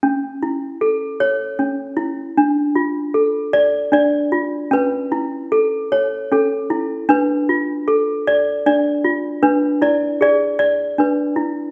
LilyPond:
\new Staff \with { instrumentName = "Toy piano" } { \time 3/4 \key d \lydian \tempo 4 = 77 << { r2. | r2 d''4 | b'4 r4 a'4 | b'4 r4 d''4 |
b'8 d''8 d''4 b'4 | } \\ { cis'8 e'8 a'8 cis''8 cis'8 e'8 | d'8 f'8 a'8 d''8 d'8 f'8 | cis'8 e'8 a'8 cis''8 cis'8 e'8 | d'8 f'8 a'8 d''8 d'8 f'8 |
d'8 e'8 gis'8 d''8 d'8 e'8 | } >> }